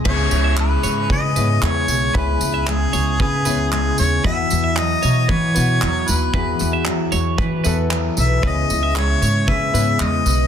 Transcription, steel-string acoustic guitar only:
\new Staff \with { instrumentName = "Steel-string acoustic guitar" } { \clef bass \time 4/4 \key cis \minor \tempo 4 = 115 cis8 e'8 gis4 cis8 b8 gis8 gis'8 | cis8 e'8 gis4 cis8 b8 gis8 gis'8 | e8 e'8 fis4 e8 b8 fis8 b'8 | e8 e'8 fis4 e8 b8 fis8 b'8 |
cis8 e'8 gis4 cis8 b8 gis8 b'8 | }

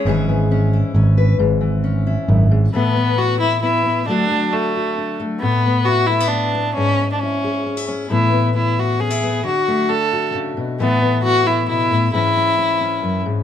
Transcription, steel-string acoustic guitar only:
\new Staff \with { instrumentName = "Steel-string acoustic guitar" } { \time 3/4 \key cis \phrygian \tempo 4 = 134 << { <e cis' e' gis'>4 cis'8 e'8 cis'8 b'8 | r4 cis'8 e'4. | <e b e' a'>8 b8 e'8 b8 b8 b8 | <fis a d' fis'>8 a8 d'8 fis'8 d'8 a8~ |
a8 b8 e'8 a16 b16 e'8 b8 | r8 cis'8 e'8 gis'8 cis'16 e'16 cis'8 | <e b>8 b8 b8 e'8 cis'16 e'16 b8 | r8 a8 d'8 fis'4. |
<e b e' a'>8 b8 e'8 b4. | <e cis'>8 cis'8 cis'8 cis'4. | } \\ { gis,8 e2~ e8 | gis,8 e4. fis,8 gis,8 | a,2. | d2. |
a,2. | gis,2. | a,2. | d2 cis8 b,8 |
a,2 b,8 a,8 | gis,2 fis,8 gis,8 | } >> }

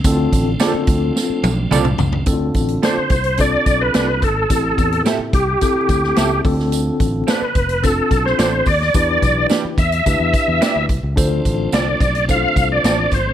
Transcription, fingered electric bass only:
\new Staff \with { instrumentName = "Fingered electric bass" } { \clef bass \time 4/4 \key d \dorian \tempo 4 = 108 d,8 a,,8 r8 d,8 r8 b,,8 c,8 cis,8 | d,8 a,,8 r8 c,4 b,,8 c,8 gis,,8 | a,,8 e,8 r8 c,8 r8 d,8 cis,8 d,8~ | d,8 a,,8 r8 f,,4 b,,8 a,,8 ees,8 |
e,8 b,,8 r8 e,8 d,16 e,16 r16 e,16 r16 d,16 c,16 cis,16 | d,8 a,,8 c,8 b,,4 c,8 a,,8 gis,,8 | }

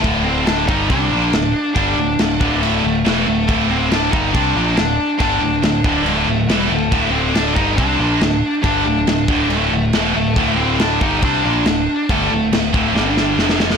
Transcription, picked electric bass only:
\new Staff \with { instrumentName = "Picked electric bass" } { \clef bass \time 4/4 \key d \minor \tempo 4 = 139 d,,4. g,,8 c,8 bes,,8 d,,8 r8 | g,,8 d,,8 d,,8 d,,4 d,,8 e,,8 d,,8 | d,,4. g,,8 c,8 bes,,8 d,,8 r8 | g,,8 d,,8 d,,8 d,,4 d,,8 e,,8 d,,8 |
r4. g,,8 c,8 bes,,8 d,,8 r8 | g,,8 d,,8 d,,8 r4 d,,8 e,,8 d,,8 | d,,4. g,,8 c,8 bes,,8 d,,8 r8 | g,,8 d,,8 d,,8 d,,8 g,,4 f,,4 | }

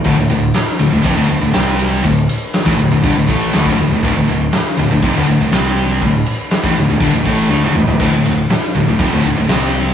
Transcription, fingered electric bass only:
\new Staff \with { instrumentName = "Fingered electric bass" } { \clef bass \time 4/4 \key c \lydian \tempo 4 = 121 d,,16 d,,16 d,,8 r8 d,,16 d,,16 f,,16 d,,16 d,,16 d,,16 c,4 | d,,8 r8. a,,16 d,,16 d,,16 g,,16 d,,16 a,,8 d,16 d,,16 d,,16 d,,16 | d,,16 d,,16 d,,8 r8 d,,16 d,,16 f,,16 d,,16 d,,16 d,,16 c,4 | d,,8 r8. a,,16 d,,16 d,,16 g,,16 d,,16 a,,8 d,16 d,,16 d,,16 d,,16 |
d,,16 d,,16 d,,8 r8 d,,16 d,,16 f,,16 d,,16 d,,16 d,,16 c,4 | }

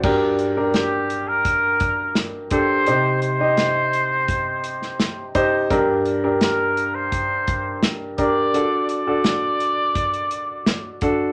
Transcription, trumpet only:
\new Staff \with { instrumentName = "Trumpet" } { \time 4/4 \key g \minor \tempo 4 = 85 r4 g'8. bes'4~ bes'16 r8 c''8~ | c''8 c''2. r8 | r4 bes'8. c''4~ c''16 r8 d''8~ | d''8 d''2. r8 | }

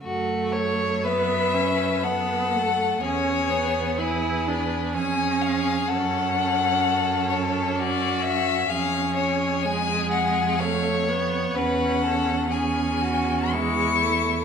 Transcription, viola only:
\new Staff \with { instrumentName = "Viola" } { \time 3/4 \key fis \minor \tempo 4 = 63 a4 b8 cis'8 b8 a8 | cis'8 b8 e'8 d'8 cis'4 | cis'2. | cis'4 gis4 a8 b8 |
cis'4 cis'4 gis8 a8 | }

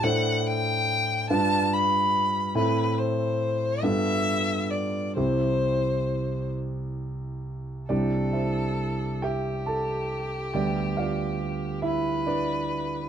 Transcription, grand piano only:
\new Staff \with { instrumentName = "Grand piano" } { \time 6/8 \key c \major \tempo 4. = 46 << { r2. | r2. | r2. | <d' g' d''>8 <e' c'' e''>4 <g' e'' g''>8 <a' a''>4 |
<g' d'' g''>8 <f' d'' f''>4 <e' e''>8 <d' b' d''>4 | } \\ { <a, d' a' c''>4. <g, d' f' b'>4. | <a, c' e' a'>4. <g, b f' a'>4. | <c, c' e' g'>2. | <c, g c' e'>2. |
<d, g b d'>2. | } >> }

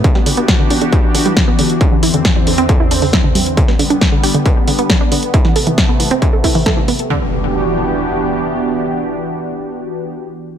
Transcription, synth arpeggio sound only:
\new Staff \with { instrumentName = "Synth arpeggio sound" } { \clef bass \time 4/4 \key e \minor \tempo 4 = 136 d16 g16 d16 b16 r16 d16 d'16 d16 e'16 r16 d16 g16 d16 b16 d16 r16 | d'16 d16 e'16 d16 r16 g16 d16 c'16 d16 e'16 d'16 d16 e'16 d16 g16 r16 | d16 b16 d16 d'16 r16 d16 g'16 d16 b'16 r16 d16 b16 d16 d'16 d16 r16 | e'16 e16 a'16 e16 r16 b16 e16 c'16 e16 a'16 e'16 e16 a'16 e16 b16 r16 |
d8 r2. r8 | r1 | }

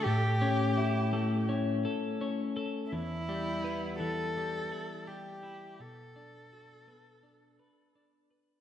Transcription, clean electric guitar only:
\new Staff \with { instrumentName = "Clean electric guitar" } { \time 4/4 \key e \dorian \tempo 4 = 84 a,8 cis'8 e'8 a8 cis'8 a'8 cis'8 a'8 | e,8 g8 b8 e8 g8 e'8 g8 e'8 | b,8 d'8 fis'8 b8 d'8 b'8 d'8 b'8 | }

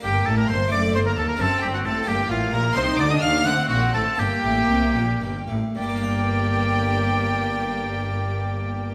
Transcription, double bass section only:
\new Staff \with { instrumentName = "Double bass section" } { \clef bass \time 6/8 \key g \minor \tempo 4. = 80 g,,8 a,,8 g,,8 fis,,8 g,,8 ees,8 | fis,,8 g,,8 a,,8 g,,8 a,,8 bes,,8 | c,8 d,8 ees,8 d,8 bes,,8 a,,8 | g,,8 a,,8 c,8 bes,,8 g,,8 a,,8 |
g,,2.~ | g,,2. | }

